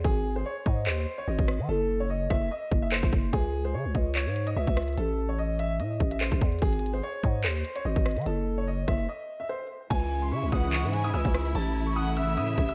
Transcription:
0.04 0.44 G#1 loud
0.04 0.34 G#4 loud
0.04 kick loud
0.36 0.44 C5 medium
0.46 0.62 C#5 medium
0.66 0.88 G#2 loud
0.66 0.82 D#5 medium
0.66 kick medium
0.87 1.06 D#2 loud
0.87 1.16 C5 medium
0.87 clap loud
1.18 1.26 C#5 medium
1.28 1.38 G#1 loud
1.28 1.66 D#5 medium
1.39 1.61 G#1 loud
1.39 kick medium
1.48 cross-stick loud
1.59 1.68 D#3 loud
1.69 2.28 F#1 loud
1.69 1.98 A4 loud
2.00 2.08 C#5 medium
2.10 2.26 D#5 medium
2.30 2.50 F#1 loud
2.30 2.47 E5 medium
2.30 kick medium
2.30 cross-stick medium
2.51 2.81 D#5 medium
2.71 3.02 F#1 loud
2.71 kick loud
2.82 2.90 E5 medium
2.92 3.08 C5 medium
2.92 clap loud
3.03 3.12 F#1 loud
3.03 kick loud
3.13 3.32 F#1 loud
3.13 kick loud
3.33 3.76 C#2 loud
3.33 3.63 G#4 loud
3.33 kick loud
3.33 closed hi-hat medium
3.65 3.72 C5 medium
3.74 3.87 C#3 loud
3.74 3.91 C#5 medium
3.85 3.94 C#2 loud
3.95 4.28 C#2 loud
3.95 4.11 D#5 medium
3.95 kick medium
3.95 closed hi-hat medium
4.15 4.45 C#5 medium
4.15 clap loud
4.15 closed hi-hat medium
4.26 4.55 G#2 loud
4.36 closed hi-hat loud
4.47 4.54 D#5 medium
4.47 closed hi-hat medium
4.56 4.67 C#2 loud
4.56 4.95 E5 medium
4.67 4.96 C#2 loud
4.67 kick medium
4.77 cross-stick loud
4.77 closed hi-hat medium
4.82 closed hi-hat medium
4.88 closed hi-hat soft
4.93 closed hi-hat soft
4.98 5.81 A1 loud
4.98 5.27 A4 medium
4.98 closed hi-hat medium
5.29 5.37 C#5 medium
5.38 5.55 D#5 medium
5.59 5.76 E5 medium
5.59 closed hi-hat medium
5.80 5.99 A2 medium
5.80 6.09 D#5 medium
5.80 closed hi-hat medium
6.00 6.30 A1 loud
6.00 kick loud
6.00 closed hi-hat loud
6.11 6.19 E5 medium
6.11 closed hi-hat medium
6.21 6.37 C5 medium
6.21 clap loud
6.32 6.41 A1 loud
6.32 kick medium
6.32 closed hi-hat medium
6.41 6.61 E2 loud
6.41 kick loud
6.52 closed hi-hat soft
6.59 7.01 G#1 loud
6.59 6.92 G#4 loud
6.59 kick loud
6.59 closed hi-hat soft
6.66 closed hi-hat medium
6.73 closed hi-hat medium
6.79 closed hi-hat medium
6.86 closed hi-hat medium
6.93 7.01 C5 medium
7.03 7.20 C#5 medium
7.23 7.46 G#2 loud
7.23 7.40 D#5 medium
7.23 kick medium
7.23 closed hi-hat medium
7.44 7.64 D#2 loud
7.44 7.74 C5 medium
7.44 clap loud
7.44 closed hi-hat medium
7.65 closed hi-hat loud
7.76 7.83 C#5 medium
7.76 closed hi-hat medium
7.85 7.96 G#1 loud
7.85 8.24 D#5 medium
7.96 8.18 G#1 loud
7.96 kick loud
8.06 cross-stick loud
8.06 closed hi-hat medium
8.11 closed hi-hat medium
8.17 8.26 D#3 loud
8.17 closed hi-hat soft
8.21 closed hi-hat soft
8.26 8.86 F#1 loud
8.26 8.56 A4 medium
8.26 closed hi-hat medium
8.58 8.66 C#5 medium
8.67 8.84 D#5 medium
8.88 9.08 F#1 loud
8.88 9.04 E5 medium
8.88 kick medium
8.88 cross-stick medium
8.88 closed hi-hat medium
9.09 9.38 D#5 medium
9.40 9.48 E5 medium
9.49 9.66 C5 medium
9.90 10.33 C#2 loud
9.90 11.53 C#3 medium
9.90 11.53 E3 medium
9.90 11.53 G#3 medium
9.90 12.74 E4 medium
9.90 10.20 G#5 loud
9.90 kick loud
9.90 closed hi-hat medium
9.90 crash loud
10.22 10.30 C6 medium
10.32 10.44 C#3 loud
10.32 10.51 E5 medium
10.32 10.48 C#6 medium
10.43 10.52 C#2 loud
10.52 10.85 C#2 loud
10.52 10.91 F#5 medium
10.52 10.69 D#6 medium
10.52 kick medium
10.52 closed hi-hat medium
10.73 11.02 C#6 medium
10.73 clap loud
10.73 closed hi-hat medium
10.84 11.12 G#2 loud
10.93 11.13 G#5 medium
10.93 closed hi-hat loud
11.04 11.12 D#6 medium
11.04 closed hi-hat medium
11.14 11.24 C#2 loud
11.14 11.53 E6 medium
11.25 11.54 C#2 loud
11.25 kick loud
11.34 cross-stick loud
11.34 closed hi-hat medium
11.40 closed hi-hat medium
11.45 closed hi-hat soft
11.50 closed hi-hat soft
11.55 12.39 A1 loud
11.55 12.74 C#3 medium
11.55 12.74 E3 medium
11.55 12.74 A3 medium
11.55 11.85 A5 loud
11.55 closed hi-hat medium
11.86 11.94 C#6 medium
11.96 12.16 F#5 medium
11.96 12.13 D#6 medium
12.17 12.74 E5 loud
12.17 12.33 E6 medium
12.17 closed hi-hat medium
12.37 12.57 A2 loud
12.37 12.67 D#6 medium
12.37 closed hi-hat medium
12.58 12.74 A1 loud
12.58 kick medium
12.58 closed hi-hat loud
12.69 12.74 E6 medium
12.69 closed hi-hat medium

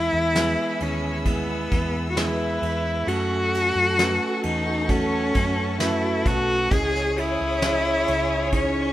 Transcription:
0.00 0.76 E3 medium
0.00 1.26 E3 medium
0.00 0.30 G#3 medium
0.00 0.30 B3 medium
0.00 1.48 B3 medium
0.00 0.30 E4 medium
0.00 0.83 E4 loud
0.00 0.31 G#4 medium
0.00 0.35 G#4 medium
0.00 2.13 G#4 medium
0.00 3.04 G#4 medium
0.00 3.04 E5 medium
0.00 3.04 B5 medium
0.00 3.04 E6 medium
0.12 0.55 E2 medium
0.12 0.57 E4 medium
0.35 1.21 G#3 medium
0.35 1.21 B3 medium
0.35 1.21 E4 medium
0.35 0.81 G#4 medium
0.35 1.22 B4 medium
0.35 snare medium
0.35 ride medium
0.59 1.03 E4 medium
0.80 1.67 D#2 medium
0.80 1.27 C#4 medium
0.80 1.72 G#4 medium
0.80 ride medium
1.04 1.94 E4 medium
1.25 2.12 G#3 medium
1.25 2.09 B3 medium
1.25 2.12 B3 medium
1.25 2.13 E4 medium
1.25 2.13 G#4 medium
1.25 kick medium
1.25 ride medium
1.49 3.17 B3 medium
1.71 2.59 E2 medium
1.71 2.17 G#4 medium
1.71 kick loud
1.71 ride medium
1.95 2.39 E4 medium
2.10 2.18 F#4 medium
2.16 3.03 G#3 medium
2.16 3.03 B3 medium
2.16 3.09 E4 medium
2.16 3.03 E4 medium
2.16 2.63 G#4 medium
2.16 3.04 G#4 medium
2.16 3.03 B4 medium
2.16 snare loud
2.16 ride medium
2.62 3.04 E2 medium
2.62 3.80 G#4 medium
2.62 ride medium
3.07 3.72 F#2 medium
3.07 4.88 F#3 medium
3.07 3.94 A3 medium
3.07 3.94 C#4 medium
3.07 4.44 F#4 loud
3.07 3.94 F#4 medium
3.07 6.68 A4 medium
3.07 6.72 A4 loud
3.07 3.94 A4 medium
3.07 6.68 F#5 medium
3.07 4.88 G#5 medium
3.07 6.68 C#6 medium
3.07 ride medium
3.31 5.13 C#4 medium
3.54 ride medium
3.75 4.18 F#2 medium
3.75 4.21 F#4 medium
3.98 4.85 A3 medium
3.98 4.85 C#4 medium
3.98 4.85 F#4 medium
3.98 4.86 B4 medium
3.98 snare medium
3.98 ride medium
4.22 4.66 F#4 medium
4.43 5.31 E2 medium
4.43 4.91 D#4 loud
4.43 ride medium
4.67 5.57 F#4 medium
4.89 6.81 F#3 medium
4.89 5.75 A3 medium
4.89 5.76 C#4 medium
4.89 5.79 C#4 loud
4.89 5.76 F#4 medium
4.89 5.76 A4 medium
4.89 6.70 A5 medium
4.89 kick medium
4.89 ride medium
5.13 6.94 C#4 medium
5.34 6.22 F#2 loud
5.34 kick medium
5.34 ride medium
5.58 6.03 F#4 medium
5.78 6.66 A3 medium
5.78 6.66 C#4 medium
5.78 6.28 E4 medium
5.78 6.67 F#4 medium
5.78 6.67 B4 medium
5.78 snare loud
5.78 ride medium
6.04 6.48 F#4 medium
6.26 6.68 B1 medium
6.26 6.74 F#4 loud
6.26 kick loud
6.26 ride medium
6.49 6.81 F#4 medium
6.70 7.36 C#2 medium
6.70 8.04 C#3 medium
6.70 8.52 C#3 medium
6.70 7.57 C#4 medium
6.70 7.58 E4 medium
6.70 7.20 G#4 loud
6.70 7.58 G#4 medium
6.70 8.93 C#5 medium
6.70 8.93 C#5 loud
6.70 7.58 D#5 medium
6.70 8.93 G#5 medium
6.70 8.51 D#6 medium
6.70 kick loud
6.70 ride medium
6.95 8.75 C#4 medium
6.95 snare soft
7.17 8.54 E4 loud
7.17 7.62 G#4 medium
7.17 ride medium
7.41 8.04 C#2 medium
7.62 8.48 C#4 medium
7.62 8.49 E4 medium
7.62 8.08 G#4 medium
7.62 8.49 G#4 medium
7.62 8.49 D#5 medium
7.62 snare loud
7.62 ride medium
8.07 8.93 C#2 medium
8.07 8.93 G#4 medium
8.07 ride medium
8.31 8.93 D#4 medium
8.52 8.93 C#3 medium
8.52 8.93 C#4 medium
8.52 8.93 C#4 loud
8.52 8.93 D#4 medium
8.52 8.93 E4 medium
8.52 8.93 G#4 medium
8.52 8.93 C#6 medium
8.52 kick medium
8.52 ride medium
8.76 8.93 C#4 medium

